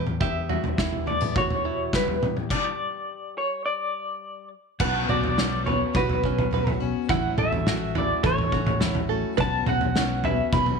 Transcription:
Already playing: steel-string acoustic guitar E2, fingered electric bass E2, five-string banjo G4
0.07 mid tom
0.20 steel-string acoustic guitar B3, five-string banjo G4, clean electric guitar E5, kick, floor tom
0.49 steel-string acoustic guitar G3, five-string banjo F#4, floor tom
0.64 floor tom
0.77 steel-string acoustic guitar E3, five-string banjo E4, kick, snare, floor tom
0.93 floor tom
1.06 steel-string acoustic guitar A3, clean electric guitar D5, floor tom
1.21 steel-string acoustic guitar B3, mid tom
1.35 steel-string acoustic guitar F#4, five-string banjo F#4, clean electric guitar C#5, kick, floor tom, mid tom
1.50 floor tom
1.64 steel-string acoustic guitar B2, five-string banjo E4
1.93 steel-string acoustic guitar G3, clean electric guitar B4, kick, snare
2.08 floor tom
2.22 steel-string acoustic guitar E2, floor tom, mid tom
2.37 mid tom
2.50 clean electric guitar D5, kick, crash
3.38 clean electric guitar C#5
3.66 clean electric guitar D5
4.79 fingered electric bass B1, steel-string acoustic guitar B2 F#3 B3 C#4 F#4, five-string banjo B4, clean electric guitar F#5, kick, floor tom, crash
5.08 fingered electric bass B1, steel-string acoustic guitar B3 C#4 F#4, five-string banjo F#4, clean electric guitar D5, floor tom, mid tom
5.24 floor tom
5.36 steel-string acoustic guitar F#3 B3 C#4 F#4, five-string banjo C#4, snare
5.64 steel-string acoustic guitar B3 C#4 F#4, five-string banjo B4, clean electric guitar C#5, floor tom
5.94 fingered electric bass B1, steel-string acoustic guitar B2 F#3 B3 C#4 F#4, five-string banjo F#4, clean electric guitar B4, kick, floor tom
6.09 floor tom
6.23 steel-string acoustic guitar B3 C#4 F#4, five-string banjo C#4, kick
6.38 floor tom, mid tom
6.51 steel-string acoustic guitar F#3 B3 C#4 F#4, five-string banjo B4, floor tom
6.67 floor tom, mid tom
6.80 steel-string acoustic guitar B3 C#4 F#4
7.09 fingered electric bass A1, steel-string acoustic guitar A2 E3 F#3 A3 C#4 F#4, five-string banjo E4, clean electric guitar F#5, kick, floor tom
7.37 fingered electric bass A1, steel-string acoustic guitar F#3 A3 C#4 F#4, five-string banjo A4, clean electric guitar E5, floor tom, mid tom
7.52 floor tom
7.67 steel-string acoustic guitar F#3 A3 C#4 F#4, five-string banjo F#4, snare, mid tom
7.95 steel-string acoustic guitar F#3 A3 C#4 F#4, five-string banjo E4, clean electric guitar D5, floor tom
8.23 fingered electric bass A1, steel-string acoustic guitar A2 E3 F#3 A3 C#4 F#4, five-string banjo A4, clean electric guitar C#5, kick, floor tom
8.38 floor tom
8.52 steel-string acoustic guitar F#3 A3 C#4 F#4, five-string banjo F#4, kick
8.67 floor tom, mid tom
8.80 steel-string acoustic guitar F#3 A3 C#4 F#4, five-string banjo E4, snare, floor tom
8.95 floor tom, mid tom
9.09 steel-string acoustic guitar F#3 A3 C#4 F#4, five-string banjo A4
9.37 fingered electric bass B1, steel-string acoustic guitar B2 F#3 B3, five-string banjo B4, clean electric guitar A5, kick, floor tom
9.41 steel-string acoustic guitar C#4 F#4
9.66 fingered electric bass B1, steel-string acoustic guitar B3 C#4 F#4, five-string banjo F#4, clean electric guitar F#5, floor tom, mid tom
9.81 floor tom
9.95 steel-string acoustic guitar F#3 B3 C#4 F#4, five-string banjo C#4, snare
10.24 steel-string acoustic guitar B3 C#4 F#4, five-string banjo B4, clean electric guitar E5, floor tom
10.52 fingered electric bass B1, steel-string acoustic guitar B2 F#3 B3 C#4 F#4, clean electric guitar B5, kick, floor tom
10.66 floor tom

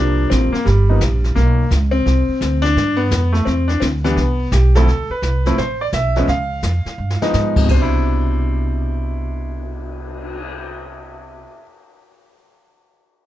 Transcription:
Already playing: upright bass C2, grand piano F3 G3 A#3 D4
0.30 upright bass A1, grand piano C4, kick, snare, hi-hat pedal
0.52 grand piano A#3, muted upright bass stroke, snare
0.65 upright bass G1, grand piano G3, brush sweep, kick, snare
0.89 grand piano F3 A#3 B3 D#4
1.01 upright bass A#1, kick, snare, hi-hat pedal
1.24 snare
1.35 upright bass B1, grand piano A#3, brush sweep, kick, snare
1.71 upright bass C#2, kick, snare, hi-hat pedal
1.91 grand piano C4
2.06 upright bass C2, brush sweep, kick, snare
2.28 muted upright bass stroke
2.41 upright bass D2, kick, snare, hi-hat pedal
2.62 grand piano D4, snare
2.76 upright bass G2, brush sweep, kick, snare
2.97 grand piano B3
3.11 upright bass F2, kick, snare, hi-hat pedal
3.33 grand piano A3, snare
3.45 upright bass E2, grand piano C4, brush sweep, kick, snare
3.68 grand piano D4, snare
3.80 upright bass D2, grand piano C4, kick, snare, hi-hat pedal
4.04 grand piano E3 G3 B3 D4, snare
4.16 upright bass C2, brush sweep, kick, snare
4.52 upright bass B1, grand piano G4, kick, snare, hi-hat pedal
4.75 grand piano D2 F3 A3 C4 E4 A4, snare
4.87 upright bass D2, brush sweep, kick, snare
5.09 grand piano B4, muted upright bass stroke
5.22 upright bass C2, kick, snare, hi-hat pedal
5.45 grand piano F3 A3 C4 E4, snare
5.57 upright bass A1, grand piano C5, brush sweep, kick, snare
5.81 grand piano D5
5.92 upright bass B1, grand piano E5, kick, snare, hi-hat pedal
6.16 grand piano F3 G#3 B3 C#4, snare
6.28 upright bass C#2, grand piano F5, brush sweep, kick, snare
6.63 upright bass F2, kick, snare, hi-hat pedal
6.85 muted upright bass stroke, snare
6.98 upright bass G2
7.10 snare
7.21 grand piano F3 G#3 B3 D#4, muted upright bass stroke, snare
7.34 upright bass G#2, snare, hi-hat pedal
7.56 grand piano C3, kick, crash
7.66 upright bass C2, grand piano B2, kick, crash
7.71 grand piano D4 C5
7.82 grand piano E4
7.91 cymbal swell

